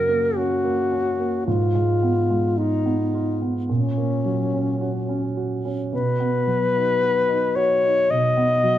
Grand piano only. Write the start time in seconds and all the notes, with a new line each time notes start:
Already playing: F#2 C#3 F#3 A#3 C#4
0.08 A#3
0.36 C#4
0.64 A#3
0.92 C#4
1.19 A#3
1.48 G#2
1.75 G#3
2.03 B3
2.30 G#3
2.59 F4
2.86 B3
3.14 F4
3.42 B3
3.69 A#2
3.97 A#3
4.25 F#3
4.54 C#4
4.81 F#4
5.09 C#4
5.37 F#4
5.65 C#4
5.93 B2
6.20 B3
6.47 F#3
6.75 D#4
7.02 F#4
7.29 D#4
7.56 F#4
7.84 D#4
8.10 B2
8.37 B3
8.64 F#3